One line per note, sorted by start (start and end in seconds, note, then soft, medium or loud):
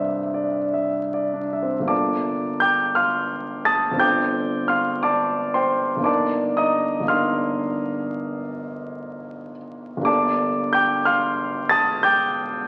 0.00 1.93 G2 soft
0.00 1.63 C4 soft
0.00 1.34 D4 soft
0.00 0.34 D5 soft
0.00 0.74 E5 soft
0.34 0.98 D5 soft
0.74 1.38 E5 soft
1.14 1.76 D5 soft
1.34 1.80 D4 soft
1.53 1.90 E5 soft
1.63 1.90 C4 soft
1.80 3.90 G1 soft
1.80 3.93 A#3 soft
1.84 3.94 D4 soft
1.84 3.96 F4 soft
1.84 3.96 A4 soft
1.84 2.60 D6 medium
1.89 2.57 D5 soft
1.89 2.57 A5 medium
2.60 2.95 G5 medium
2.60 2.95 D6 medium
2.60 2.96 G6 medium
2.95 3.63 F5 soft
2.95 3.62 C6 soft
2.95 3.66 F6 medium
3.65 3.99 A5 medium
3.65 3.99 D#6 medium
3.65 4.01 A6 medium
3.91 5.95 G1 soft
3.91 6.00 C4 soft
3.91 5.99 D4 soft
3.97 6.02 F4 soft
3.97 6.03 A4 soft
3.97 4.66 G5 medium
3.97 4.66 D6 medium
3.97 4.70 G6 medium
4.68 5.02 F5 medium
4.68 5.02 C6 medium
4.68 5.04 F6 medium
5.03 5.52 D5 soft
5.03 5.52 A5 medium
5.03 5.55 D6 medium
5.54 6.04 C5 medium
5.54 6.04 G5 soft
5.54 6.07 C6 medium
5.97 6.99 G1 soft
5.97 7.01 A#3 soft
5.97 7.03 D4 soft
6.03 7.05 D#4 soft
6.03 7.06 A#4 soft
6.03 6.55 D5 medium
6.03 6.55 A5 medium
6.03 6.58 D6 medium
6.57 7.06 D#5 medium
6.57 7.06 A#5 medium
6.57 7.09 D#6 medium
7.00 9.96 G1 soft
7.00 9.97 A#3 soft
7.04 9.99 D4 soft
7.04 10.01 D#4 soft
7.04 10.02 A#4 soft
7.04 9.55 F6 medium
7.09 9.52 F5 soft
7.09 9.52 C6 medium
9.97 12.68 G1 soft
9.97 12.68 A#3 soft
9.97 12.68 D4 soft
10.03 12.68 G4 soft
10.03 12.68 A4 soft
10.03 10.71 D5 medium
10.03 10.71 A5 medium
10.03 10.73 D6 medium
10.73 11.05 G5 medium
10.73 11.06 D6 medium
10.73 11.07 G6 medium
11.05 11.68 F5 medium
11.05 11.68 C6 medium
11.05 11.71 F6 medium
11.69 12.02 A5 medium
11.69 12.02 D#6 medium
11.69 12.04 A6 medium
12.03 12.67 G5 medium
12.03 12.67 D6 medium
12.03 12.68 G6 medium